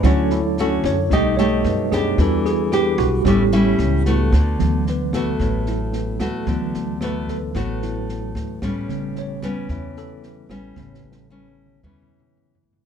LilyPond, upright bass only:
\new Staff \with { instrumentName = "Upright bass" } { \clef bass \time 4/4 \key d \major \tempo 4 = 112 d,4. fis,8 b,,4 fis,4 | e,4. b,,8 a,,4 cis,4 | d,8 d,4. a,,4. d,8 | d,8 d,4. a,,4. d,8 |
a,,8 a,,4. e,4. a,,8 | a,,8 a,,4. e,4. a,,8 | }